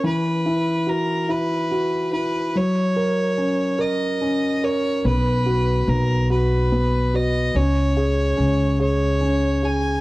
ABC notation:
X:1
M:6/8
L:1/8
Q:3/8=48
K:B
V:1 name="Fiddle"
B2 A B2 B | c3 d2 c | B2 A B2 d | c3 c2 g |]
V:2 name="Grand piano"
E, E F E F E | F, A C A C A | B, F B, F B, F | C G C G C G |]
V:3 name="Upright bass" clef=bass
z6 | z6 | B,,,2 B,,,4 | C,,2 C,,4 |]